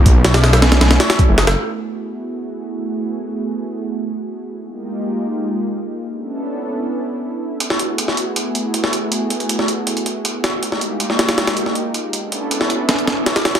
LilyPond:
<<
  \new Staff \with { instrumentName = "Analog synth pad" } { \time 4/4 \key fis \minor \tempo 4 = 159 <a cis' d' e'>1 | <a b e' fis' gis'>1~ | <a b e' fis' gis'>1 | <aes bes ees' f' g'>1 |
<b cis' d' e' a'>1 | <a b fis' gis'>1~ | <a b fis' gis'>1 | <aes bes ees' f' g'>1 |
<b cis' d' e' a'>1 | }
  \new Staff \with { instrumentName = "Detuned saw bass" } { \clef bass \time 4/4 \key fis \minor b,,2 b,,8 r8. fis,,8 fis,,16 | r1 | r1 | r1 |
r1 | r1 | r1 | r1 |
r1 | }
  \new DrumStaff \with { instrumentName = "Drums" } \drummode { \time 4/4 <hh bd>8 <hh sn>16 <hh sn>16 <hh sn>16 <hh sn>16 <hh sn>16 <hh sn>16 <hh sn>16 <hh sn>16 <hh sn>16 <hh sn>16 <hh bd>8 <hh sn>16 <hh sn>16 | r4 r4 r4 r4 | r4 r4 r4 r4 | r4 r4 r4 r4 |
r4 r4 r4 r4 | hh16 sn16 hh8 hh16 sn16 hh8 hh8 hh8 hh16 sn16 hh8 | hh8 hh16 hh16 hh16 sn16 hh8 hh16 hh16 hh8 hh8 <hh sn>8 | hh16 sn16 hh8 hh16 sn16 <hh sn>16 <hh sn>16 <hh sn>16 <hh sn>16 hh16 sn16 hh8 hh8 |
hh8 hh8 hh16 sn16 hh8 <hh sn>16 hh16 <hh sn>8 <hh sn>16 <hh sn>16 <hh sn>16 <hh sn>16 | }
>>